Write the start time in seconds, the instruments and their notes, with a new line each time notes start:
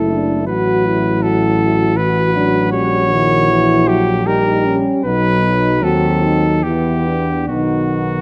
Already playing: tuba F#1, trombone A3, french horn section E4, euphonium E4, cornet A4
0.10 french horn section D4
0.46 tuba A1, trombone F#3, french horn section F#4, euphonium F#4, cornet B4
0.85 french horn section E4
1.23 euphonium F#4, cornet A4
1.96 trombone E3, french horn section F#4, euphonium F#4, cornet B4
2.34 trombone F#3, french horn section D4
2.72 tuba A#1, trombone G3, french horn section C#4, cornet C#5
3.11 trombone D#3, french horn section E4
3.50 trombone E3
3.87 trombone F#3, cornet G4
4.26 trombone G3, french horn section D#4, euphonium G4, cornet A#4
4.65 french horn section C#4
5.04 tuba B1, trombone F#3, french horn section B3, euphonium D#4, cornet B4
5.43 french horn section D#4
5.82 tuba D#2, euphonium C4, french horn section F#4, cornet A4
6.23 french horn section D#4
6.63 tuba E2, trombone E3, euphonium B3, french horn section E4, cornet G4
7.07 french horn section D4
7.47 tuba B1, trombone D#3, euphonium B3, french horn section D#4, cornet F#4